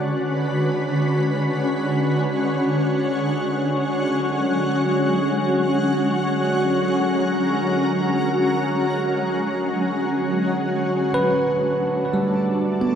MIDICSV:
0, 0, Header, 1, 4, 480
1, 0, Start_track
1, 0, Tempo, 500000
1, 12434, End_track
2, 0, Start_track
2, 0, Title_t, "Ambient pad"
2, 0, Program_c, 0, 92
2, 0, Note_on_c, 0, 50, 89
2, 0, Note_on_c, 0, 56, 68
2, 0, Note_on_c, 0, 61, 80
2, 0, Note_on_c, 0, 66, 91
2, 0, Note_on_c, 0, 71, 69
2, 3515, Note_on_c, 0, 54, 95
2, 3520, Note_off_c, 0, 71, 0
2, 3530, Note_off_c, 0, 50, 0
2, 6129, Note_on_c, 0, 70, 74
2, 10501, Note_off_c, 0, 61, 0
2, 10502, Note_off_c, 0, 54, 0
2, 10505, Note_off_c, 0, 56, 0
2, 10505, Note_off_c, 0, 66, 0
2, 10509, Note_off_c, 0, 70, 0
2, 10516, Note_on_c, 0, 57, 87
2, 10779, Note_on_c, 0, 62, 80
2, 12434, Note_off_c, 0, 57, 0
2, 12434, Note_off_c, 0, 62, 0
2, 12434, End_track
3, 0, Start_track
3, 0, Title_t, "Tine electric piano"
3, 0, Program_c, 1, 4
3, 10679, Control_c, 1, 64, 127
3, 10697, Note_on_c, 1, 71, 69
3, 11650, Note_on_c, 1, 55, 54
3, 12301, Note_on_c, 1, 59, 54
3, 12434, Note_off_c, 1, 55, 0
3, 12434, Note_off_c, 1, 59, 0
3, 12434, Note_off_c, 1, 71, 0
3, 12434, End_track
4, 0, Start_track
4, 0, Title_t, "Synth drone"
4, 0, Program_c, 2, 95
4, 0, Note_on_c, 2, 50, 67
4, 0, Note_on_c, 2, 66, 66
4, 12434, Note_off_c, 2, 50, 0
4, 12434, Note_off_c, 2, 66, 0
4, 12434, End_track
0, 0, End_of_file